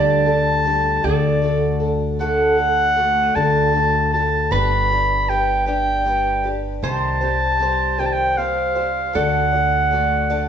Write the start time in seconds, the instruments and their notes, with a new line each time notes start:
Already playing: upright bass D2, twelve-string acoustic guitar D3 G3 D4 G4 A4, resonator guitar played with a steel bar D5, clarinet A5
0.26 twelve-string acoustic guitar D4 G4 A4
0.64 twelve-string acoustic guitar G3 D4 G4 A4
1.03 upright bass D2, twelve-string acoustic guitar D3 A3 D4 F#4 A4, clarinet D5
1.42 twelve-string acoustic guitar A3 D4 F#4 A4
1.80 twelve-string acoustic guitar D4 F#4 A4
2.19 twelve-string acoustic guitar D3 A3 D4 F#4 A4, clarinet F#5
2.57 twelve-string acoustic guitar D4 F#4 A4
2.96 twelve-string acoustic guitar A3 D4 F#4 A4
3.29 resonator guitar played with a steel bar G4
3.35 upright bass D2, twelve-string acoustic guitar D3 A3 D4 F#4 A4, clarinet A5
3.73 twelve-string acoustic guitar A3 D4 F#4 A4
4.12 twelve-string acoustic guitar D4 F#4 A4, clarinet A5
4.51 upright bass G1, twelve-string acoustic guitar G3 D4 G4 B4, clarinet B5
4.89 twelve-string acoustic guitar D4 G4 B4
5.28 twelve-string acoustic guitar G3 D4 G4 B4, clarinet G5
5.66 twelve-string acoustic guitar G3 D4 G4 B4, clarinet G5
6.05 twelve-string acoustic guitar G3 D4 G4 B4
6.44 twelve-string acoustic guitar D4 G4 B4
6.82 upright bass C2, twelve-string acoustic guitar C3 D#3 G3 C4 G4 C5, clarinet A5
7.21 twelve-string acoustic guitar G3 C4 G4 C5
7.59 twelve-string acoustic guitar G3 C4 G4 C5
7.99 twelve-string acoustic guitar C3 D#3 G3 C4 G4 C5, clarinet G5
8.06 clarinet A5
8.13 clarinet G5
8.37 twelve-string acoustic guitar G3 C4 G4 C5, clarinet F5
8.75 twelve-string acoustic guitar G3 C4 G4 C5
9.13 upright bass D2, twelve-string acoustic guitar D3 A3 D4 F#4 D5, resonator guitar played with a steel bar A4, clarinet F#5
9.53 twelve-string acoustic guitar D4 F#4 D5
9.91 twelve-string acoustic guitar A3 D4 F#4 D5
10.30 twelve-string acoustic guitar D3 A3 D4 F#4 D5